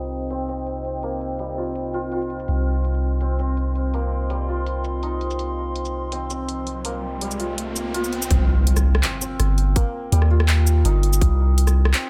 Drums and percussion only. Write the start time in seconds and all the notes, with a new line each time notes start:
0.04 shaker
0.30 closed hi-hat
0.49 shaker
0.67 closed hi-hat
0.85 closed hi-hat
1.03 closed hi-hat
1.21 closed hi-hat
1.39 closed hi-hat
1.75 closed hi-hat
1.94 shaker
2.12 closed hi-hat
2.21 shaker
2.30 closed hi-hat
2.40 shaker
2.48 closed hi-hat
2.84 closed hi-hat
2.94 shaker
3.21 closed hi-hat
3.39 shaker
3.57 closed hi-hat
3.75 closed hi-hat
3.94 closed hi-hat
4.30 closed hi-hat
4.67 closed hi-hat
4.84 shaker
5.03 closed hi-hat
5.21 closed hi-hat
5.31 shaker
5.39 closed hi-hat
5.76 closed hi-hat
5.85 shaker
6.12 closed hi-hat
6.30 shaker
6.49 closed hi-hat
6.67 closed hi-hat
6.85 closed hi-hat
7.21 closed hi-hat
7.31 shaker
7.40 closed hi-hat
7.58 closed hi-hat
7.76 closed hi-hat, shaker
7.94 closed hi-hat
8.04 shaker
8.13 closed hi-hat
8.22 shaker
8.31 kick, closed hi-hat
8.67 closed hi-hat
8.77 cross-stick, shaker
8.95 cross-stick
9.03 clap, closed hi-hat
9.21 shaker
9.40 cross-stick, closed hi-hat
9.58 closed hi-hat
9.76 kick, closed hi-hat
10.12 closed hi-hat
10.22 cross-stick
10.40 cross-stick
10.48 clap, closed hi-hat
10.67 shaker
10.85 closed hi-hat
11.03 closed hi-hat
11.13 shaker
11.21 kick, closed hi-hat
11.58 closed hi-hat
11.67 cross-stick, shaker
11.85 cross-stick
11.94 clap, closed hi-hat